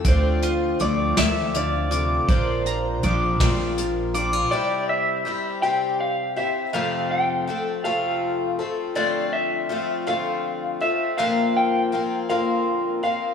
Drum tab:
HH |xxxxxx|xxxxxx|------|------|
SD |---o--|---o--|------|------|
BD |o-----|o--o--|------|------|

HH |------|------|
SD |------|------|
BD |------|------|